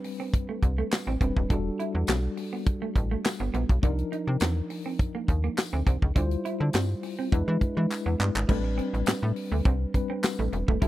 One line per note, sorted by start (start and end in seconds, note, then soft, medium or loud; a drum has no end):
0.00 1.16 G3 medium
0.00 1.17 C4 medium
0.00 1.17 D4 medium
0.00 1.17 B4 medium
0.04 muted clean electric guitar stroke soft
0.04 open hi-hat medium
0.20 0.28 C4 medium
0.34 kick loud
0.34 closed hi-hat medium
0.49 0.57 A3 medium
0.63 0.83 C2 medium
0.63 muted clean electric guitar stroke soft
0.63 kick medium
0.63 closed hi-hat medium
0.78 0.86 A3 medium
0.92 muted clean electric guitar stroke soft
0.92 snare loud
0.92 clap medium
0.92 closed hi-hat medium
0.92 tambourine medium
1.07 1.17 A1 medium
1.07 1.15 C4 medium
1.20 1.32 E1 medium
1.20 1.48 G3 medium
1.20 1.50 C4 medium
1.20 1.30 C4 medium
1.20 1.48 D4 medium
1.20 1.50 B4 medium
1.20 kick medium
1.20 closed hi-hat medium
1.37 1.46 D#1 medium
1.37 kick medium
1.49 1.71 E1 loud
1.49 3.79 G3 medium
1.49 3.79 D4 medium
1.49 1.59 D4 medium
1.49 3.79 F#4 medium
1.49 3.79 A4 medium
1.49 kick loud
1.49 closed hi-hat medium
1.79 1.88 E4 medium
1.79 closed hi-hat medium
1.95 2.04 E2 medium
1.95 muted clean electric guitar stroke soft
2.07 2.29 B1 medium
2.07 2.17 C4 medium
2.07 snare loud
2.07 clap loud
2.07 closed hi-hat medium
2.07 tambourine medium
2.37 muted clean electric guitar stroke soft
2.37 open hi-hat medium
2.53 2.61 B3 medium
2.67 kick loud
2.67 closed hi-hat medium
2.82 2.90 A3 medium
2.96 3.16 A1 loud
2.96 muted clean electric guitar stroke soft
2.96 kick medium
2.96 closed hi-hat medium
3.11 3.19 A3 medium
3.25 muted clean electric guitar stroke soft
3.25 snare loud
3.25 clap medium
3.25 closed hi-hat medium
3.25 tambourine medium
3.40 3.50 G1 medium
3.40 3.48 B3 medium
3.54 3.65 A#1 medium
3.54 3.63 B3 medium
3.54 closed hi-hat medium
3.69 3.79 B1 medium
3.69 kick medium
3.69 closed hi-hat medium
3.82 4.04 C2 loud
3.82 6.12 F3 medium
3.82 6.12 D4 medium
3.82 3.92 D4 medium
3.82 6.12 D#4 medium
3.82 6.12 A#4 medium
3.82 kick loud
3.82 closed hi-hat medium
3.99 closed hi-hat medium
4.12 4.21 D#4 medium
4.12 closed hi-hat medium
4.27 4.37 C3 medium
4.27 muted clean electric guitar stroke soft
4.40 4.62 E2 medium
4.40 4.50 C4 medium
4.40 snare loud
4.40 clap loud
4.40 closed hi-hat medium
4.40 tambourine medium
4.70 muted clean electric guitar stroke soft
4.70 open hi-hat medium
4.86 4.94 C4 medium
4.99 kick loud
4.99 closed hi-hat medium
5.15 5.23 A#3 medium
5.28 5.49 D#2 medium
5.28 muted clean electric guitar stroke soft
5.28 kick medium
5.28 closed hi-hat medium
5.44 5.52 A#3 medium
5.58 muted clean electric guitar stroke soft
5.58 snare loud
5.58 clap medium
5.58 closed hi-hat medium
5.58 tambourine medium
5.73 5.83 D2 medium
5.73 5.81 C4 medium
5.87 5.98 C2 medium
5.87 5.96 C4 medium
5.87 kick medium
5.87 closed hi-hat medium
6.02 6.12 C#2 medium
6.02 kick medium
6.15 6.36 D2 loud
6.15 7.30 G3 medium
6.15 6.25 D4 medium
6.15 7.30 E4 medium
6.15 7.30 F4 medium
6.15 7.31 C5 medium
6.15 kick loud
6.15 closed hi-hat medium
6.31 closed hi-hat medium
6.45 6.54 E4 medium
6.45 closed hi-hat medium
6.60 6.70 D3 medium
6.60 muted clean electric guitar stroke soft
6.73 6.95 G2 medium
6.73 6.83 C4 medium
6.73 snare loud
6.73 clap medium
6.73 closed hi-hat medium
6.73 tambourine medium
7.03 muted clean electric guitar stroke soft
7.03 open hi-hat medium
7.19 7.27 C4 medium
7.32 7.43 E2 loud
7.32 8.46 G#3 medium
7.32 8.46 D4 medium
7.32 8.47 E4 medium
7.32 8.47 B4 medium
7.32 kick loud
7.32 closed hi-hat medium
7.48 7.57 E3 loud
7.48 7.56 G#3 medium
7.61 muted clean electric guitar stroke soft
7.61 kick medium
7.61 closed hi-hat medium
7.77 7.87 E3 medium
7.77 7.85 G#3 medium
7.91 muted clean electric guitar stroke soft
7.91 clap medium
7.91 tambourine medium
8.06 8.16 E2 medium
8.06 8.14 B3 medium
8.20 8.31 G2 medium
8.20 8.29 B3 medium
8.20 clap medium
8.35 8.45 G#1 loud
8.35 clap medium
8.48 8.80 A1 medium
8.48 9.91 G3 medium
8.48 8.58 A3 medium
8.48 9.91 C4 medium
8.48 9.92 D4 medium
8.48 9.92 B4 medium
8.48 kick loud
8.48 crash medium
8.64 muted clean electric guitar stroke soft
8.78 8.87 C4 medium
8.78 closed hi-hat medium
8.94 9.03 A1 medium
8.94 closed hi-hat medium
9.06 9.13 A2 soft
9.06 9.16 C4 medium
9.06 snare loud
9.06 clap loud
9.06 closed hi-hat loud
9.06 tambourine medium
9.22 9.32 A2 loud
9.22 muted clean electric guitar stroke soft
9.36 open hi-hat medium
9.52 9.61 D2 medium
9.52 9.60 A3 medium
9.65 9.86 C2 medium
9.65 9.74 C4 medium
9.65 kick loud
9.65 closed hi-hat medium
9.94 10.80 G3 medium
9.94 10.82 C4 medium
9.94 10.80 D4 soft
9.94 10.82 B4 medium
9.94 muted clean electric guitar stroke soft
9.94 kick medium
9.94 closed hi-hat medium
10.10 10.18 C4 medium
10.23 snare loud
10.23 clap medium
10.23 closed hi-hat medium
10.23 tambourine loud
10.39 10.49 A1 medium
10.39 10.47 A3 medium
10.53 10.64 E1 medium
10.53 muted clean electric guitar stroke soft
10.53 closed hi-hat medium
10.68 10.78 D#1 medium
10.68 10.76 A3 medium
10.68 kick medium
10.81 10.88 E1 medium
10.81 10.88 G3 medium
10.81 10.88 D4 medium
10.81 10.88 E4 medium
10.81 10.88 F#4 medium
10.81 10.88 A4 medium
10.81 kick loud
10.81 closed hi-hat loud